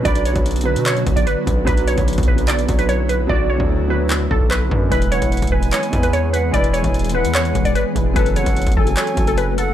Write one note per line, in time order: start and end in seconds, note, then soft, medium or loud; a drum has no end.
0.00 4.88 D3 medium
0.00 0.03 F#3 loud
0.00 4.88 F#3 medium
0.00 0.29 F#3 medium
0.00 8.12 B3 medium
0.00 0.05 D4 medium
0.00 1.64 F#4 loud
0.00 0.07 B4 loud
0.05 0.34 B1 loud
0.05 0.31 D4 medium
0.05 0.32 B4 loud
0.05 0.24 D5 loud
0.05 kick loud
0.05 closed hi-hat medium
0.15 closed hi-hat medium
0.25 0.44 C#5 medium
0.25 closed hi-hat medium
0.33 0.78 B1 loud
0.33 0.60 F#3 medium
0.33 0.61 D4 medium
0.33 kick medium
0.33 closed hi-hat medium
0.38 0.62 B4 medium
0.46 closed hi-hat medium
0.51 closed hi-hat medium
0.56 closed hi-hat medium
0.61 1.33 F#3 medium
0.61 closed hi-hat medium
0.66 1.34 D4 medium
0.66 0.84 B4 medium
0.66 1.35 B4 medium
0.76 1.05 B2 loud
0.76 closed hi-hat medium
0.86 1.15 C#5 medium
0.86 clap loud
0.86 closed hi-hat medium
0.97 closed hi-hat soft
1.06 1.26 B1 loud
1.06 kick loud
1.06 closed hi-hat medium
1.16 1.26 D5 medium
1.16 kick medium
1.16 closed hi-hat medium
1.27 1.65 B4 medium
1.27 closed hi-hat medium
1.44 1.66 B1 loud
1.44 1.63 F#3 medium
1.44 1.64 D4 medium
1.44 kick loud
1.44 closed hi-hat medium
1.49 1.65 B4 medium
1.65 1.96 B1 loud
1.65 1.91 F#3 loud
1.65 1.93 D4 medium
1.65 4.88 E4 loud
1.65 1.86 B4 loud
1.65 kick loud
1.65 closed hi-hat medium
1.69 1.94 B4 loud
1.77 closed hi-hat medium
1.88 2.06 C#5 medium
1.88 closed hi-hat medium
1.95 2.17 B1 loud
1.95 2.30 F#3 medium
1.95 2.32 D4 medium
1.95 kick medium
1.95 closed hi-hat medium
2.00 2.33 B4 medium
2.08 closed hi-hat medium
2.13 closed hi-hat medium
2.18 2.67 B1 loud
2.18 kick loud
2.18 closed hi-hat medium
2.23 closed hi-hat medium
2.28 2.47 B4 medium
2.28 kick loud
2.36 2.63 F#3 medium
2.36 2.64 D4 medium
2.36 closed hi-hat medium
2.41 2.65 B4 medium
2.48 2.77 D5 medium
2.48 clap loud
2.48 closed hi-hat medium
2.59 closed hi-hat soft
2.66 3.27 B1 loud
2.66 3.18 F#3 medium
2.66 3.19 D4 medium
2.66 kick loud
2.66 closed hi-hat medium
2.71 3.21 C#5 medium
2.79 2.88 B4 medium
2.79 closed hi-hat medium
2.89 3.08 C#5 medium
2.89 closed hi-hat medium
3.09 3.28 B4 medium
3.09 closed hi-hat medium
3.27 3.59 B1 loud
3.27 3.54 F#3 loud
3.27 3.55 D4 medium
3.27 3.48 D5 loud
3.27 kick loud
3.32 3.56 F#4 loud
3.50 3.68 C#5 medium
3.58 4.28 D2 loud
3.58 3.84 F#3 medium
3.58 3.85 D4 medium
3.58 kick medium
3.62 3.86 A4 medium
3.88 4.57 F#3 medium
3.88 4.58 D4 medium
3.88 4.09 B4 medium
3.93 4.59 C#5 medium
4.10 clap loud
4.31 4.70 B1 loud
4.31 4.50 A4 medium
4.31 kick loud
4.41 kick medium
4.51 4.89 B4 medium
4.51 clap loud
4.69 4.91 F#2 loud
4.69 4.87 F#3 medium
4.69 4.88 D4 medium
4.69 kick loud
4.74 4.89 B4 medium
4.89 5.21 E1 loud
4.89 8.13 E3 medium
4.89 5.16 G#3 medium
4.89 8.13 G#3 medium
4.89 5.17 E4 medium
4.89 8.13 G#4 medium
4.89 5.10 B4 loud
4.89 kick loud
4.89 closed hi-hat medium
4.94 5.18 B4 loud
5.02 closed hi-hat medium
5.12 5.30 C#5 medium
5.12 5.50 F#5 medium
5.12 closed hi-hat medium
5.20 5.41 E1 loud
5.20 5.55 G#3 medium
5.20 5.56 E4 medium
5.20 kick medium
5.20 closed hi-hat medium
5.24 5.57 B4 medium
5.32 closed hi-hat medium
5.37 closed hi-hat medium
5.42 5.71 E1 loud
5.42 kick loud
5.42 closed hi-hat medium
5.47 closed hi-hat medium
5.52 5.71 B4 medium
5.52 6.30 G#5 medium
5.52 kick loud
5.60 5.87 G#3 medium
5.60 5.88 E4 medium
5.60 closed hi-hat medium
5.65 5.89 B4 medium
5.72 6.01 C#5 medium
5.72 clap loud
5.72 closed hi-hat medium
5.83 closed hi-hat soft
5.91 6.51 E2 loud
5.91 6.43 G#3 medium
5.91 6.44 E4 medium
5.91 kick loud
5.91 closed hi-hat medium
5.95 6.45 B4 medium
6.03 6.13 B4 medium
6.03 closed hi-hat medium
6.13 6.32 C#5 medium
6.13 closed hi-hat medium
6.33 6.52 B4 medium
6.33 6.53 F#5 medium
6.33 closed hi-hat medium
6.51 6.83 E1 loud
6.51 6.78 G#3 loud
6.51 6.79 E4 medium
6.51 6.72 D5 loud
6.51 kick loud
6.51 closed hi-hat medium
6.56 6.80 B4 loud
6.64 closed hi-hat medium
6.74 6.92 C#5 medium
6.74 7.12 G#5 medium
6.74 closed hi-hat medium
6.82 7.26 E1 loud
6.82 7.09 G#3 medium
6.82 7.10 E4 medium
6.82 kick medium
6.82 closed hi-hat medium
6.87 7.11 B4 medium
6.94 closed hi-hat medium
6.99 closed hi-hat medium
7.04 closed hi-hat medium
7.09 7.81 G#3 medium
7.09 closed hi-hat medium
7.15 7.82 E4 medium
7.15 7.33 B4 medium
7.15 7.84 B4 medium
7.15 7.72 F#5 medium
7.25 7.54 E2 loud
7.25 closed hi-hat medium
7.35 7.64 C#5 medium
7.35 clap loud
7.35 closed hi-hat medium
7.45 closed hi-hat soft
7.55 7.75 E1 loud
7.55 kick loud
7.55 closed hi-hat medium
7.65 7.75 D5 medium
7.65 kick medium
7.65 closed hi-hat medium
7.75 8.13 B4 medium
7.75 closed hi-hat medium
7.93 8.15 E1 loud
7.93 8.11 G#3 medium
7.93 8.12 E4 medium
7.93 kick loud
7.93 closed hi-hat medium
7.98 8.14 B4 medium
8.14 8.45 F#1 loud
8.14 9.74 C#3 medium
8.14 8.40 F#3 medium
8.14 9.74 F#3 medium
8.14 9.74 A3 medium
8.14 8.41 C#4 medium
8.14 9.74 F#4 loud
8.14 8.35 B4 loud
8.14 kick loud
8.14 closed hi-hat medium
8.18 8.43 A4 loud
8.26 closed hi-hat medium
8.36 8.55 C#5 medium
8.36 8.74 F#5 medium
8.36 closed hi-hat medium
8.44 8.66 F#1 loud
8.44 8.79 F#3 medium
8.44 8.80 C#4 medium
8.44 kick medium
8.44 closed hi-hat medium
8.48 8.81 A4 medium
8.56 closed hi-hat medium
8.62 closed hi-hat medium
8.67 8.76 F#1 loud
8.67 kick loud
8.67 closed hi-hat medium
8.72 closed hi-hat medium
8.77 8.96 F#1 loud
8.77 8.96 A4 medium
8.77 9.54 G#5 medium
8.77 kick loud
8.85 9.11 F#3 medium
8.85 9.12 C#4 medium
8.85 closed hi-hat medium
8.89 9.14 A4 medium
8.97 9.26 C#5 medium
8.97 clap loud
8.97 closed hi-hat loud
9.07 closed hi-hat soft
9.15 9.74 F#1 loud
9.15 9.67 F#3 medium
9.15 9.68 C#4 medium
9.15 kick loud
9.15 closed hi-hat medium
9.19 9.69 A4 medium
9.27 9.37 A4 medium
9.27 closed hi-hat medium
9.38 9.56 B4 medium
9.38 closed hi-hat medium
9.58 9.74 A4 medium
9.58 9.74 F#5 medium
9.58 closed hi-hat medium